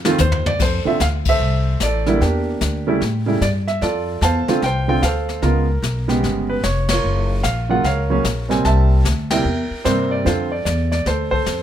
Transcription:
Already playing: upright bass F2
0.05 grand piano D#3 A3 C4 F4, snare
0.18 upright bass D#2, grand piano C5, hi-hat pedal, high tom
0.32 floor tom
0.46 grand piano D5, floor tom
0.59 upright bass F2, grand piano A4 C5, brush sweep, kick, snare, crash
0.85 grand piano D3 A3 C4 F4 E5, muted upright bass stroke
1.00 upright bass D2, grand piano F5, kick, snare, hi-hat pedal
1.25 grand piano E5, kick, crash
1.30 grand piano A4 C5
1.40 upright bass C2, brush sweep
1.80 upright bass A1, grand piano D5, kick, snare, hi-hat pedal
1.84 grand piano A4
2.06 grand piano D3 G3 A#3 E4, snare
2.21 upright bass E2, grand piano A#3 D4 G4, brush sweep, kick, snare
2.61 upright bass D2, kick, snare, hi-hat pedal
2.87 grand piano C#3 G3 A3 E4
3.01 upright bass A2, brush sweep, kick, snare
3.26 grand piano C#3 G3 A3 E4
3.41 upright bass G2, grand piano D5, kick, snare, hi-hat pedal
3.68 grand piano E5, snare
3.81 upright bass F2, grand piano F4 A4 D5, brush sweep, kick, snare
4.21 upright bass E2, grand piano C5 F5 A5, kick, snare, hi-hat pedal
4.48 grand piano D3 A3 C4 F4, muted upright bass stroke, snare
4.62 upright bass C2, grand piano G5, brush sweep, kick, snare
4.66 grand piano C5
4.88 grand piano D3 A3 C4 F4 G5
5.02 upright bass D2, grand piano A4 C5 F5, kick, snare, hi-hat pedal
5.29 snare
5.42 upright bass C#2, grand piano C#3 G#3 B3 F4 A#4, brush sweep, kick, snare
5.82 upright bass B1, kick, snare, hi-hat pedal
6.08 grand piano C#3 G#3 B3 G4, snare
6.23 upright bass G1, brush sweep, kick, snare
6.50 grand piano B4
6.63 upright bass F1, grand piano C#5, kick, snare, hi-hat pedal
6.88 grand piano A#4 C#5, snare, ride
6.93 grand piano F4
7.04 upright bass F#1, brush sweep
7.43 upright bass A#1, grand piano F5, kick, snare, hi-hat pedal
7.69 grand piano C#3 F#3 A#3 F4 F#5
7.84 upright bass C#2, grand piano A#4 C#5 F5, brush sweep, kick, snare
8.10 grand piano C#3 F#3 A#3 C#4
8.24 upright bass A#1, kick, snare, hi-hat pedal
8.49 grand piano C3 G3 A#3 C4 G#5, snare
8.65 upright bass C2, grand piano E5 A5, brush sweep, kick, snare
9.04 upright bass D2, kick, snare, hi-hat pedal
9.30 grand piano C3 G3 A#3 E4 A#4 E5 G5, snare, ride
9.45 upright bass E2, brush sweep
9.70 muted upright bass stroke
9.85 upright bass G2, grand piano C3 G3 A#3 C4 C5, kick, snare, hi-hat pedal
10.11 grand piano D5
10.25 upright bass F2, grand piano D3 A3 C4 F4 A4 C5, brush sweep, kick, snare
10.52 grand piano D5
10.65 upright bass E2, grand piano D5, kick, snare, hi-hat pedal
10.92 grand piano D5, snare
11.05 upright bass D2, grand piano A4 C5, brush sweep, kick, snare
11.31 grand piano A4 C5, kick
11.46 upright bass F2, kick, snare, hi-hat pedal

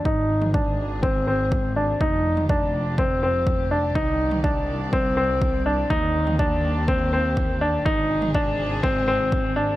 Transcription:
Already playing: string section D#3
0.04 double bass section G#1, string section C3 G#3 C4 G#4, grand piano D#4, kick
0.42 mid tom
0.54 grand piano D4, kick
1.03 grand piano C4, kick
1.27 grand piano C4
1.52 kick
1.76 grand piano D4
2.00 double bass section F1, string section G3 G#3 F4 G4, grand piano D#4, kick
2.37 mid tom
2.49 grand piano D4, kick
2.98 grand piano C4, kick
3.23 grand piano C4
3.47 kick
3.71 grand piano D4
3.94 double bass section C2, string section D#3 G3 C4 D5, grand piano D#4, kick
4.31 mid tom
4.44 grand piano D4, kick
4.93 grand piano C4, kick
5.17 grand piano C4
5.42 kick
5.66 grand piano D4
5.89 double bass section D#2, string section G3 A#3 G4, grand piano D#4, kick
6.27 mid tom
6.39 grand piano D4, kick
6.88 grand piano C4, kick
7.13 grand piano C4
7.37 kick
7.61 grand piano D4
7.85 double bass section G#1, string section C3 G#3 C4 G#4, grand piano D#4, kick
8.22 mid tom
8.35 grand piano D4, kick
8.83 grand piano C4, kick
9.08 grand piano C4
9.32 kick
9.56 grand piano D4

